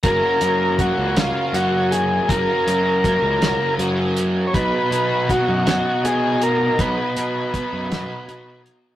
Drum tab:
HH |xxxxxx|xxxxxx|xxxxxx|xxxxxx|
SD |---o--|---o--|---o--|---o--|
BD |o-o---|o-o---|o-o---|o-o---|